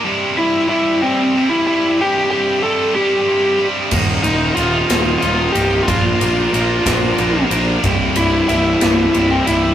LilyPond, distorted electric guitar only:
\new Staff \with { instrumentName = "Distorted electric guitar" } { \clef bass \time 6/8 \key c \mixolydian \tempo 4. = 61 <c, g, c g e'>8 <c g e'>8 <g, c g e'>8 <c g e'>8 <g, c g e'>8 <c g e'>8 | <c, g, c g e'>8 <c g e'>8 <g, c g e'>8 <c g e'>8 <g, c g e'>8 <c g e'>8 | <ees, bes, ees f bes ees'>8 <ees f bes ees'>8 <ees f bes ees'>8 <ees f bes ees'>8 <ees f bes ees'>8 <ees f bes ees'>8 | <bes, f bes d' f' bes'>8 <bes d' f' bes'>8 <bes d' f' bes'>8 <bes d' f' bes'>8 <bes d' f' bes'>8 <bes d' f' bes'>8 |
<c, g, c g e'>8 <c g e'>8 <g, c g e'>8 <c g e'>8 <g, c g e'>8 <c g e'>8 | }